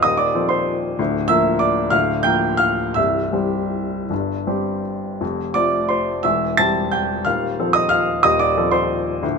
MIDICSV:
0, 0, Header, 1, 2, 480
1, 0, Start_track
1, 0, Key_signature, -1, "major"
1, 0, Tempo, 314795
1, 78, Time_signature, 3, 2, 24, 8
1, 3441, Tempo, 370370
1, 7281, Tempo, 342075
1, 9681, Tempo, 327869
1, 13274, End_track
2, 0, Start_track
2, 0, Title_t, "Grand piano"
2, 0, Program_c, 0, 0
2, 0, Control_c, 0, 64, 127
2, 39, Note_on_c, 0, 87, 77
2, 53, Note_on_c, 0, 75, 64
2, 61, Note_on_c, 0, 27, 47
2, 65, Note_on_c, 0, 39, 48
2, 100, Control_c, 0, 64, 0
2, 265, Note_on_c, 0, 86, 73
2, 279, Note_off_c, 0, 75, 0
2, 284, Note_on_c, 0, 74, 60
2, 288, Note_off_c, 0, 87, 0
2, 346, Control_c, 0, 64, 127
2, 521, Note_off_c, 0, 27, 0
2, 523, Note_off_c, 0, 39, 0
2, 532, Note_on_c, 0, 53, 44
2, 535, Note_on_c, 0, 69, 39
2, 540, Note_on_c, 0, 60, 43
2, 741, Note_off_c, 0, 74, 0
2, 742, Note_on_c, 0, 84, 66
2, 761, Note_on_c, 0, 72, 54
2, 766, Note_off_c, 0, 86, 0
2, 1444, Note_off_c, 0, 53, 0
2, 1446, Note_off_c, 0, 69, 0
2, 1447, Note_off_c, 0, 72, 0
2, 1449, Note_off_c, 0, 60, 0
2, 1489, Note_off_c, 0, 84, 0
2, 1508, Note_on_c, 0, 38, 58
2, 1510, Note_on_c, 0, 26, 48
2, 1539, Control_c, 0, 64, 0
2, 1760, Control_c, 0, 64, 127
2, 1949, Note_on_c, 0, 88, 102
2, 1970, Note_off_c, 0, 26, 0
2, 1970, Note_off_c, 0, 38, 0
2, 1971, Note_on_c, 0, 76, 69
2, 1974, Note_on_c, 0, 58, 42
2, 1980, Note_on_c, 0, 53, 44
2, 1983, Note_on_c, 0, 70, 50
2, 2428, Note_off_c, 0, 76, 0
2, 2429, Note_on_c, 0, 86, 70
2, 2441, Note_on_c, 0, 74, 57
2, 2451, Note_off_c, 0, 88, 0
2, 2879, Note_off_c, 0, 58, 0
2, 2882, Note_off_c, 0, 53, 0
2, 2884, Note_off_c, 0, 70, 0
2, 2897, Note_off_c, 0, 74, 0
2, 2904, Note_on_c, 0, 89, 81
2, 2922, Note_on_c, 0, 77, 68
2, 2925, Note_off_c, 0, 86, 0
2, 2929, Note_on_c, 0, 38, 61
2, 2930, Note_on_c, 0, 26, 51
2, 2972, Control_c, 0, 64, 0
2, 3192, Control_c, 0, 64, 127
2, 3394, Note_off_c, 0, 77, 0
2, 3399, Note_on_c, 0, 91, 90
2, 3418, Note_off_c, 0, 26, 0
2, 3418, Note_off_c, 0, 38, 0
2, 3419, Note_on_c, 0, 79, 69
2, 3420, Note_off_c, 0, 89, 0
2, 3420, Note_on_c, 0, 53, 45
2, 3432, Note_on_c, 0, 58, 43
2, 3439, Note_on_c, 0, 70, 51
2, 3853, Note_on_c, 0, 89, 86
2, 3854, Note_off_c, 0, 79, 0
2, 3869, Note_on_c, 0, 77, 65
2, 3879, Note_off_c, 0, 91, 0
2, 4308, Note_off_c, 0, 53, 0
2, 4313, Note_off_c, 0, 58, 0
2, 4316, Note_off_c, 0, 70, 0
2, 4321, Note_off_c, 0, 77, 0
2, 4331, Note_on_c, 0, 88, 72
2, 4347, Note_off_c, 0, 89, 0
2, 4349, Note_on_c, 0, 76, 58
2, 4353, Note_on_c, 0, 36, 48
2, 4355, Note_on_c, 0, 24, 45
2, 4397, Control_c, 0, 64, 0
2, 4612, Control_c, 0, 64, 127
2, 4828, Note_on_c, 0, 55, 39
2, 4832, Note_off_c, 0, 36, 0
2, 4833, Note_off_c, 0, 24, 0
2, 4835, Note_on_c, 0, 60, 36
2, 4840, Note_on_c, 0, 67, 39
2, 5769, Note_off_c, 0, 55, 0
2, 5772, Note_off_c, 0, 60, 0
2, 5774, Note_off_c, 0, 67, 0
2, 5828, Note_on_c, 0, 31, 41
2, 5835, Note_on_c, 0, 43, 43
2, 5863, Control_c, 0, 64, 0
2, 6093, Control_c, 0, 64, 127
2, 6295, Note_off_c, 0, 31, 0
2, 6299, Note_off_c, 0, 43, 0
2, 6311, Note_on_c, 0, 55, 35
2, 6314, Note_on_c, 0, 60, 40
2, 6320, Note_on_c, 0, 67, 41
2, 6745, Note_off_c, 0, 76, 0
2, 6788, Note_off_c, 0, 88, 0
2, 7229, Note_off_c, 0, 55, 0
2, 7231, Note_off_c, 0, 60, 0
2, 7234, Note_off_c, 0, 67, 0
2, 7266, Note_on_c, 0, 29, 45
2, 7269, Note_on_c, 0, 41, 44
2, 7305, Control_c, 0, 64, 0
2, 7516, Control_c, 0, 64, 127
2, 7732, Note_on_c, 0, 86, 84
2, 7740, Note_off_c, 0, 29, 0
2, 7741, Note_off_c, 0, 41, 0
2, 7744, Note_on_c, 0, 74, 61
2, 7751, Note_on_c, 0, 57, 37
2, 7758, Note_on_c, 0, 60, 35
2, 7764, Note_on_c, 0, 65, 40
2, 8204, Note_off_c, 0, 74, 0
2, 8216, Note_on_c, 0, 84, 63
2, 8232, Note_off_c, 0, 86, 0
2, 8237, Note_on_c, 0, 72, 47
2, 8658, Note_off_c, 0, 57, 0
2, 8662, Note_off_c, 0, 60, 0
2, 8665, Note_off_c, 0, 65, 0
2, 8681, Note_off_c, 0, 72, 0
2, 8699, Note_on_c, 0, 88, 78
2, 8704, Note_off_c, 0, 84, 0
2, 8716, Note_on_c, 0, 76, 57
2, 8721, Note_on_c, 0, 40, 47
2, 8722, Note_on_c, 0, 28, 41
2, 8744, Control_c, 0, 64, 0
2, 8968, Control_c, 0, 64, 127
2, 9162, Note_off_c, 0, 76, 0
2, 9182, Note_on_c, 0, 93, 89
2, 9184, Note_off_c, 0, 28, 0
2, 9184, Note_off_c, 0, 40, 0
2, 9186, Note_off_c, 0, 88, 0
2, 9194, Note_on_c, 0, 81, 66
2, 9206, Note_on_c, 0, 55, 40
2, 9208, Note_on_c, 0, 60, 38
2, 9217, Note_on_c, 0, 67, 40
2, 9645, Note_off_c, 0, 81, 0
2, 9660, Note_on_c, 0, 91, 70
2, 9673, Note_off_c, 0, 93, 0
2, 9675, Note_on_c, 0, 79, 56
2, 10108, Note_off_c, 0, 55, 0
2, 10109, Note_off_c, 0, 60, 0
2, 10114, Note_off_c, 0, 67, 0
2, 10125, Note_off_c, 0, 79, 0
2, 10144, Note_on_c, 0, 89, 73
2, 10151, Note_off_c, 0, 91, 0
2, 10163, Note_on_c, 0, 77, 54
2, 10165, Note_on_c, 0, 27, 43
2, 10166, Note_on_c, 0, 39, 46
2, 10189, Control_c, 0, 64, 0
2, 10435, Control_c, 0, 64, 127
2, 10629, Note_off_c, 0, 27, 0
2, 10630, Note_off_c, 0, 39, 0
2, 10650, Note_on_c, 0, 53, 41
2, 10656, Note_on_c, 0, 69, 42
2, 10657, Note_on_c, 0, 60, 42
2, 10835, Note_off_c, 0, 77, 0
2, 10856, Note_on_c, 0, 87, 82
2, 10872, Note_on_c, 0, 75, 58
2, 10876, Note_off_c, 0, 89, 0
2, 11087, Note_on_c, 0, 89, 84
2, 11102, Note_on_c, 0, 77, 65
2, 11105, Note_off_c, 0, 75, 0
2, 11115, Note_off_c, 0, 87, 0
2, 11559, Note_off_c, 0, 53, 0
2, 11562, Note_off_c, 0, 69, 0
2, 11563, Note_off_c, 0, 60, 0
2, 11565, Note_off_c, 0, 77, 0
2, 11585, Note_on_c, 0, 87, 85
2, 11592, Note_off_c, 0, 89, 0
2, 11600, Note_on_c, 0, 75, 69
2, 11602, Note_on_c, 0, 27, 52
2, 11613, Note_on_c, 0, 39, 52
2, 11641, Control_c, 0, 64, 0
2, 11825, Note_on_c, 0, 86, 81
2, 11828, Note_off_c, 0, 75, 0
2, 11838, Note_off_c, 0, 87, 0
2, 11839, Note_on_c, 0, 74, 64
2, 11858, Control_c, 0, 64, 127
2, 12071, Note_off_c, 0, 27, 0
2, 12077, Note_off_c, 0, 39, 0
2, 12086, Note_on_c, 0, 53, 42
2, 12091, Note_on_c, 0, 60, 44
2, 12091, Note_on_c, 0, 69, 49
2, 12291, Note_off_c, 0, 74, 0
2, 12293, Note_on_c, 0, 84, 78
2, 12306, Note_on_c, 0, 72, 60
2, 12317, Note_off_c, 0, 86, 0
2, 12988, Note_off_c, 0, 72, 0
2, 12991, Note_off_c, 0, 53, 0
2, 12993, Note_off_c, 0, 60, 0
2, 12993, Note_off_c, 0, 69, 0
2, 13033, Note_off_c, 0, 84, 0
2, 13044, Note_on_c, 0, 26, 51
2, 13045, Note_on_c, 0, 38, 56
2, 13077, Control_c, 0, 64, 0
2, 13274, Note_off_c, 0, 26, 0
2, 13274, Note_off_c, 0, 38, 0
2, 13274, End_track
0, 0, End_of_file